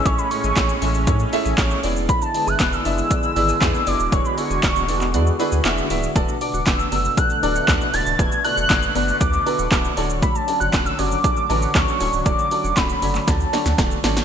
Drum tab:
HH |x-o-x-o-x-o-x-o-|x-o-x-o-x-o-x-o-|x-o-x-o-x-o-x-o-|x-o-x-o-x-o-x-o-|
SH |xxxxxxxxxxxxxxxx|xxxxxxxxxxxxxxxx|xxxxxxxxxxxxxxxx|xxxxxxxxxxxxxxxx|
CP |----x-------x---|----x-------x---|----x--x----x---|----x-------x---|
SD |----o-------o---|----o-------o---|----o-------o---|----o-------o---|
BD |o---o---o---o---|o---o---o---o---|o---o-----------|o---o---o---o---|

HH |x-o-x-o-x-o-x-o-|x-o-x-o-x-o-x-o-|x-o-x-o-x-o-x-o-|
SH |xxxxxxxxxxxxxxxx|xxxxxxxxxxxxxxxx|xxxxxxxxxxxxxxxx|
CP |----x-------x---|----x-------x---|----x--x--------|
SD |----o-------o---|----o-------o---|----o---o-ooo-oo|
BD |o---o---o---o---|o---o---o---o---|o---o---o---o---|